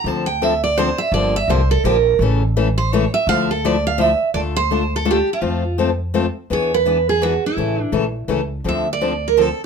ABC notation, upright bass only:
X:1
M:3/4
L:1/8
Q:"Swing" 1/4=168
K:Dm
V:1 name="Upright bass" clef=bass
D,,6 | G,,,2 C,,2 B,,,2 | A,,,6 | D,,6 |
D,,6 | F,,6 | E,,6 | A,,,2 B,,,2 ^C,,2 |
D,,6 |]